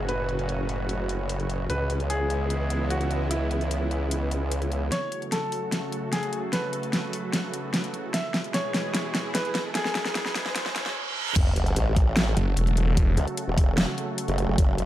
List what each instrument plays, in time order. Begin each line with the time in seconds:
Already playing: wobble bass F#1, supersaw synth A2 C#3 F#3 C#4 F#4
0.09 grand piano B4, closed hi-hat
0.29 closed hi-hat
0.39 closed hi-hat
0.49 closed hi-hat
0.69 closed hi-hat
0.89 closed hi-hat
1.09 closed hi-hat
1.29 closed hi-hat
1.40 closed hi-hat
1.50 closed hi-hat
1.70 wobble bass C#2, supersaw synth E3 G#3 B3 E4, grand piano B4, closed hi-hat
1.90 closed hi-hat
2.00 closed hi-hat
2.10 grand piano G#4, closed hi-hat
2.30 closed hi-hat
2.50 closed hi-hat
2.70 closed hi-hat
2.90 grand piano F#4, closed hi-hat
3.01 closed hi-hat
3.11 closed hi-hat
3.31 grand piano E4, closed hi-hat
3.51 closed hi-hat
3.61 closed hi-hat
3.71 closed hi-hat
3.91 closed hi-hat
4.11 closed hi-hat
4.31 closed hi-hat
4.51 closed hi-hat
4.62 closed hi-hat
4.72 closed hi-hat
4.92 supersaw synth C#3 F#3 A3 F#4 A4, grand piano C#5, snare, closed hi-hat, riser
5.12 closed hi-hat
5.22 closed hi-hat
5.32 grand piano A4, snare, closed hi-hat
5.52 open hi-hat
5.72 snare, closed hi-hat
5.92 closed hi-hat
6.12 grand piano G#4, snare, closed hi-hat
6.23 closed hi-hat
6.33 closed hi-hat
6.53 grand piano B4, snare, closed hi-hat
6.73 closed hi-hat
6.83 closed hi-hat
6.93 snare, closed hi-hat
7.13 open hi-hat
7.33 snare, closed hi-hat
7.54 closed hi-hat
7.74 snare, closed hi-hat
7.84 closed hi-hat
7.94 closed hi-hat
8.14 supersaw synth B2 E3 G#3 E4 G#4, grand piano E5, snare, closed hi-hat
8.34 snare, closed hi-hat
8.44 closed hi-hat
8.54 grand piano C#5, snare, closed hi-hat
8.74 snare, open hi-hat
8.94 snare, closed hi-hat
9.15 snare, closed hi-hat
9.35 grand piano B4, snare, closed hi-hat
9.45 closed hi-hat
9.55 snare, closed hi-hat
9.75 grand piano G#4, snare, closed hi-hat
9.85 snare
9.95 snare, closed hi-hat
10.05 snare, closed hi-hat
10.15 snare, closed hi-hat
10.26 snare
10.35 snare, open hi-hat
10.46 snare
10.55 snare, closed hi-hat, reverse cymbal
10.66 snare
10.76 snare, closed hi-hat
10.86 snare
11.36 wobble bass F#1, supersaw synth C#3 F#3 A3 F#4 A4, kick, closed hi-hat, crash, sub drop
11.56 wobble bass F#1, closed hi-hat
11.66 closed hi-hat
11.76 wobble bass A1, closed hi-hat
11.96 kick, open hi-hat
12.17 snare, closed hi-hat
12.37 detuned saw bass F#1, closed hi-hat
12.57 detuned saw bass E1, closed hi-hat
12.67 closed hi-hat
12.77 closed hi-hat
12.97 kick, closed hi-hat
13.17 wobble bass C#2, closed hi-hat
13.28 closed hi-hat
13.37 closed hi-hat
13.48 wobble bass E1
13.58 kick, open hi-hat
13.78 snare, closed hi-hat
13.98 closed hi-hat
14.18 closed hi-hat
14.28 wobble bass F#1, closed hi-hat
14.38 closed hi-hat
14.48 wobble bass F#1
14.58 wobble bass F#1, kick, closed hi-hat
14.78 wobble bass F#1, closed hi-hat